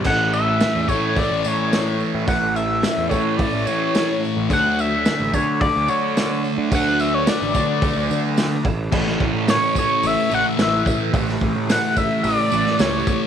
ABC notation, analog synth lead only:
X:1
M:4/4
L:1/16
Q:1/4=108
K:Amix
V:1 name="Analog synth lead"
f2 e4 c2 d2 c4 z2 | f2 e4 c2 d2 c4 z2 | f2 e4 c2 d2 c4 z2 | f2 e c d8 z4 |
z4 c2 c2 e2 f2 e3 z | z4 f2 e2 d4 c3 z |]